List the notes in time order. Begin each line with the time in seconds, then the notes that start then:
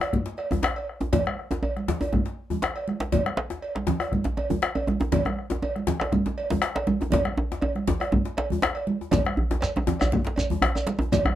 0.01 bombo rim, cowbell, djembe tone
0.13 bombo rim, bombo low, high conga
0.26 djembe slap
0.37 bombo rim, cowbell, djembe slap
0.51 bombo rim, djembe tone, high conga, djembe bass, low conga
0.63 bombo rim, djembe slap, djembe tone
0.76 cowbell
0.89 bombo rim
1.00 djembe tone, high conga
1.13 bombo low, cowbell, djembe slap, djembe tone, djembe bass, low conga
1.26 bombo rim, high conga
1.39 bombo rim
1.51 bombo rim, djembe slap, djembe tone
1.63 cowbell, djembe tone
1.76 bombo rim, high conga
1.88 bombo rim, djembe slap, high conga, djembe bass, low conga
2.01 cowbell, djembe tone
2.13 bombo rim, bombo low, djembe tone, high conga
2.26 djembe slap
2.50 djembe tone, high conga, djembe bass, low conga
2.62 bombo rim, djembe slap
2.76 bombo rim, cowbell, djembe slap
2.88 bombo rim, high conga
3.00 djembe slap, djembe tone
3.12 bombo low, cowbell, djembe slap, djembe bass, low conga
3.26 bombo rim, high conga
3.37 bombo rim, djembe slap
3.50 bombo rim, djembe slap, djembe tone
3.62 cowbell
3.75 bombo rim, djembe slap, high conga
3.87 bombo rim, djembe slap, high conga, djembe bass, low conga
4.00 bombo rim, cowbell, djembe tone
4.12 bombo rim, bombo low, high conga
4.24 djembe slap, djembe tone
4.37 cowbell, djembe tone
4.50 djembe tone, high conga, djembe bass, low conga
4.62 bombo rim, djembe slap
4.75 bombo rim, cowbell, djembe slap, djembe tone
4.87 bombo rim, djembe tone, high conga
5.00 djembe tone
5.12 bombo low, cowbell, djembe slap, djembe tone, djembe bass, low conga
5.25 bombo rim, djembe tone, high conga
5.39 bombo rim
5.50 bombo rim, djembe slap, djembe tone
5.62 cowbell, djembe tone
5.76 bombo rim, high conga
5.87 bombo rim, djembe slap, high conga, djembe bass, low conga
6.00 bombo rim, cowbell, djembe slap, djembe tone
6.12 bombo rim, bombo low, djembe tone, high conga
6.26 djembe slap, djembe tone
6.38 cowbell
6.50 djembe slap, high conga, djembe tone, low conga, djembe bass
6.62 bombo rim, djembe slap
6.75 bombo rim, cowbell, djembe slap
6.87 bombo rim, high conga, djembe tone
7.01 djembe tone
7.12 bombo low, cowbell, djembe slap, djembe tone, low conga, djembe bass
7.25 bombo rim, high conga
7.37 djembe tone
7.52 bombo rim, djembe slap, djembe tone
7.61 cowbell, djembe tone
7.75 bombo rim, high conga
7.87 djembe slap, djembe tone, low conga, djembe bass
8.00 bombo rim, cowbell, high conga, djembe tone
8.12 bombo low, high conga, djembe tone
8.25 djembe slap
8.37 cowbell, djembe slap
8.50 high conga, djembe tone, low conga, djembe bass
8.62 bombo rim, djembe slap
8.75 bombo rim, cowbell, djembe slap
8.87 djembe slap, high conga
9.01 djembe tone
9.11 bombo low, cowbell, djembe slap, djembe tone, low conga, djembe bass, shekere
9.25 bombo rim, high conga
9.37 bombo rim, djembe bass
9.51 bombo rim, djembe slap, djembe tone
9.61 cowbell, djembe slap, shekere
9.76 bombo rim, high conga, djembe tone
9.87 bombo rim, djembe slap, high conga, djembe bass, low conga
10.00 bombo rim, cowbell, djembe tone, djembe bass, shekere
10.12 bombo rim, bombo low, high conga, djembe tone
10.25 djembe slap
10.27 djembe slap
10.36 cowbell, djembe tone, shekere
10.50 high conga, djembe tone, low conga, djembe bass
10.62 bombo rim, djembe slap, djembe bass
10.75 bombo rim, cowbell, djembe slap, djembe tone, shekere
10.87 bombo rim, djembe slap, high conga
10.99 djembe tone
11.01 djembe tone
11.12 bombo low, cowbell, djembe slap, low conga, djembe bass, shekere
11.25 bombo rim, high conga, djembe bass